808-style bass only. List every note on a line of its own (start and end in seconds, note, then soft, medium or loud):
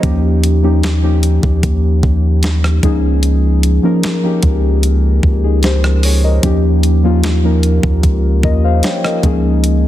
0.03 1.39 D#2 loud
1.43 1.62 D#2 loud
1.63 2.02 D#2 loud
2.03 2.80 D#2 loud
2.83 3.79 C#2 loud
4.43 5.20 C#2 loud
5.23 6.39 C#2 loud
6.43 7.79 D#2 loud
7.83 8.03 D#2 loud
8.04 8.42 C#2 loud
8.43 8.82 D#2 loud
9.24 9.88 C#2 loud